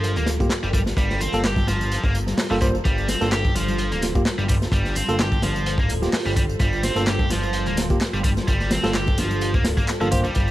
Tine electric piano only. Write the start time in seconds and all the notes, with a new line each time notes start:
0.40 A#3 F4 G4
1.34 A#3 F4 A4
2.51 A#3 F4 A4
2.61 A#3 F4 C5
3.21 A#3 F4 A4
4.15 A#3 F4 G4
5.09 A#3 F4 A4
6.02 A#3 F4 G4
6.96 A#3 F4 A4
7.90 A#3 F4 G4
8.84 A#3 F4 A4
10.01 A#3 F4 A4
10.12 A#3 F4 C5